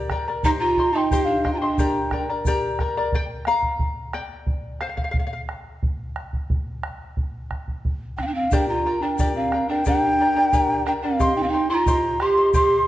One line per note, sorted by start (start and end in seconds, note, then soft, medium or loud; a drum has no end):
0.00 0.10 G4 medium
0.00 0.11 A#4 medium
0.00 0.10 D5 medium
0.00 0.10 A#5 medium
0.10 0.28 A#4 medium
0.10 0.27 D5 medium
0.10 0.27 G5 medium
0.10 0.27 A#5 medium
0.10 bombo rim medium
0.10 bombo low soft
0.28 0.45 A#4 medium
0.28 0.44 D5 soft
0.28 0.44 A#5 medium
0.43 0.50 D#4 medium
0.43 0.78 G4 medium
0.43 0.77 C5 medium
0.43 0.77 D#5 medium
0.43 0.77 G5 medium
0.43 0.51 A#5 loud
0.43 0.78 C6 medium
0.43 bombo low medium
0.43 shaker medium
0.59 0.95 F4 medium
0.59 0.95 A#5 loud
0.77 0.95 C5 medium
0.77 0.94 D#5 medium
0.77 0.94 G5 medium
0.77 0.94 C6 medium
0.77 bombo low soft
0.93 1.28 D#4 medium
0.93 1.11 C5 soft
0.93 1.12 D#5 medium
0.93 0.98 A5 medium
0.93 1.12 C6 medium
0.97 1.27 G5 medium
1.11 1.45 G4 medium
1.11 1.43 C5 medium
1.11 1.44 D#5 medium
1.11 1.43 G5 medium
1.11 1.45 C6 medium
1.11 bombo low medium
1.11 shaker medium
1.25 1.54 D4 medium
1.25 1.53 F5 medium
1.44 1.61 C5 medium
1.44 1.61 D#5 medium
1.44 1.61 G5 medium
1.44 1.60 C6 medium
1.44 bombo rim soft
1.44 bombo low soft
1.53 1.62 F4 soft
1.53 1.60 A#5 medium
1.59 2.28 D4 medium
1.59 1.79 D#5 soft
1.59 2.27 G5 medium
1.59 1.78 C6 medium
1.63 1.79 C5 medium
1.78 2.12 G4 medium
1.78 2.12 A#4 medium
1.78 2.12 D5 medium
1.78 2.11 G5 medium
1.78 2.12 A#5 medium
1.78 bombo low medium
1.78 shaker medium
2.11 2.29 A#4 medium
2.11 2.29 D5 medium
2.11 2.29 G5 medium
2.11 2.28 A#5 medium
2.11 bombo rim soft
2.11 bombo low soft
2.30 2.46 A#4 soft
2.30 2.46 D5 medium
2.30 2.46 A#5 medium
2.45 2.80 G4 medium
2.45 2.79 A#4 medium
2.45 2.80 D5 medium
2.45 2.79 G5 medium
2.45 2.80 A#5 medium
2.45 bombo low medium
2.45 shaker medium
2.79 2.97 A#4 medium
2.79 2.96 D5 medium
2.79 2.96 G5 medium
2.79 2.96 A#5 medium
2.79 bombo rim soft
2.79 bombo low medium
2.97 3.14 A#4 soft
2.97 3.14 D5 medium
2.97 3.13 A#5 medium
3.12 3.23 D5 medium
3.12 3.24 G5 medium
3.12 bombo low medium
3.45 4.10 F5 medium
3.45 4.16 A#5 medium
3.45 bombo rim soft
3.63 bombo low soft
3.79 bombo low medium
4.13 4.77 D5 medium
4.13 4.80 G5 medium
4.13 bombo rim soft
4.47 bombo low medium
4.81 4.89 C5 medium
4.81 4.88 F5 medium
4.81 bombo rim soft
4.89 4.96 F5 soft
4.97 5.03 F5 medium
4.97 bombo low soft
5.04 5.10 F5 medium
5.11 5.18 F5 medium
5.11 bombo low medium
5.19 5.25 F5 soft
5.27 5.32 F5 medium
5.33 5.40 F5 soft
5.49 bombo rim soft
5.83 bombo low medium
6.16 bombo rim soft
6.33 bombo low medium
6.50 bombo low medium
6.83 bombo rim medium
7.17 bombo low medium
7.51 bombo rim soft
7.51 bombo low soft
7.68 bombo low soft
7.85 bombo low medium
8.17 8.23 D4 medium
8.17 8.24 G5 medium
8.17 bombo rim soft
8.17 bombo low soft
8.22 8.28 C4 soft
8.22 8.28 F5 medium
8.26 8.34 D4 medium
8.26 8.34 G5 medium
8.35 8.52 C4 medium
8.35 8.55 F5 medium
8.51 8.68 D4 medium
8.51 8.86 G4 medium
8.51 8.85 A#4 medium
8.51 8.86 D5 medium
8.51 8.85 G5 medium
8.51 8.68 G5 loud
8.51 8.86 A#5 medium
8.51 bombo low medium
8.51 shaker medium
8.69 9.03 F4 medium
8.69 9.04 A#5 medium
8.86 9.02 A#4 medium
8.86 9.02 D5 medium
8.86 9.02 G5 medium
8.86 9.01 A#5 medium
9.02 9.35 D4 medium
9.02 9.19 A#4 soft
9.02 9.18 D5 soft
9.02 9.35 G5 medium
9.02 9.19 A#5 medium
9.18 9.53 G4 medium
9.18 9.52 A#4 medium
9.18 9.53 D5 medium
9.18 9.52 G5 medium
9.18 9.53 A#5 medium
9.18 bombo low medium
9.18 shaker medium
9.35 9.67 C4 medium
9.35 9.67 F5 medium
9.52 9.70 A#4 medium
9.52 9.69 D5 medium
9.52 9.69 G5 medium
9.52 9.68 A#5 medium
9.52 bombo rim soft
9.68 9.84 D4 medium
9.68 9.86 A#4 soft
9.68 9.86 D5 soft
9.68 9.85 G5 medium
9.68 9.86 A#5 medium
9.85 10.82 D4 medium
9.85 10.20 G4 medium
9.85 10.20 A#4 medium
9.85 10.20 D5 medium
9.85 10.19 G5 medium
9.85 10.84 G5 loud
9.85 10.20 A#5 medium
9.85 bombo low medium
9.85 shaker medium
10.20 10.36 A#4 medium
10.20 10.36 D5 medium
10.20 10.37 G5 medium
10.20 10.35 A#5 medium
10.36 10.52 A#4 soft
10.36 10.53 D5 medium
10.36 10.53 A#5 medium
10.53 10.87 G4 medium
10.53 10.86 A#4 medium
10.53 10.87 D5 medium
10.53 10.86 G5 medium
10.53 10.87 A#5 medium
10.53 bombo low medium
10.53 shaker medium
10.86 10.92 D4 medium
10.86 11.03 A#4 medium
10.86 11.03 D5 medium
10.86 11.04 G5 medium
10.86 10.93 G5 medium
10.86 11.03 A#5 medium
10.86 bombo rim soft
11.02 11.34 C4 medium
11.02 11.19 A#4 soft
11.02 11.20 D5 medium
11.02 11.34 F5 medium
11.02 11.20 A#5 medium
11.19 11.53 G4 medium
11.19 11.53 C5 medium
11.19 11.54 D#5 medium
11.19 11.52 G5 medium
11.19 11.53 C6 medium
11.19 bombo low medium
11.19 shaker medium
11.36 11.42 D#4 medium
11.36 11.42 G5 medium
11.43 11.50 C4 medium
11.43 11.51 F5 medium
11.48 11.69 D#4 medium
11.48 11.69 G5 medium
11.53 11.70 C5 medium
11.53 11.70 D#5 medium
11.53 11.70 G5 medium
11.53 11.69 C6 medium
11.70 12.22 F4 medium
11.70 11.87 C5 soft
11.70 11.86 D#5 soft
11.70 11.75 C6 loud
11.70 11.87 C6 medium
11.74 12.23 A#5 loud
11.86 12.21 G4 medium
11.86 12.21 C5 medium
11.86 12.20 D#5 medium
11.86 12.20 G5 medium
11.86 12.21 C6 medium
11.86 bombo low medium
11.86 shaker medium
12.20 12.53 G4 medium
12.20 12.37 C5 medium
12.20 12.37 D#5 medium
12.20 12.38 G5 medium
12.20 12.53 C6 loud
12.20 12.36 C6 medium
12.20 bombo rim medium
12.37 12.53 C5 soft
12.37 12.54 D#5 medium
12.37 12.54 C6 medium
12.54 12.87 G4 medium
12.54 12.87 C5 medium
12.54 12.87 D#5 medium
12.54 12.86 G5 medium
12.54 12.87 C6 loud
12.54 12.87 C6 medium
12.54 bombo low medium
12.54 shaker medium